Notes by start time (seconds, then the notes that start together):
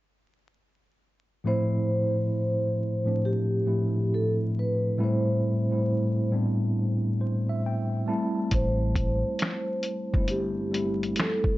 1.44 A2 F3 A3 C4 E4 C5
3.05 A2 F3 A3 C4 D4
3.25 G4
3.66 A2 F3 A3 C4 E4
4.14 A4
4.59 B4
4.98 A2 G3 A3 C4 E4
5.04 C5
5.70 A2 G3 A3 C4 E4
6.31 A2 G3 B3 C4 D4
7.21 C5
7.49 E5
7.66 G5
8.06 G3 A3 C4 E4 A5
8.51 A1 C5, kick, closed hi-hat
8.96 kick, closed hi-hat
9.39 finger snap, snare, closed hi-hat
9.83 closed hi-hat
10.14 G1 G3 A3 C4 E4, kick
10.28 G4, closed hi-hat
10.71 G3 A3 C4 E4, closed hi-hat
11.03 closed hi-hat
11.16 A4, snare, closed hi-hat
11.20 finger snap
11.44 kick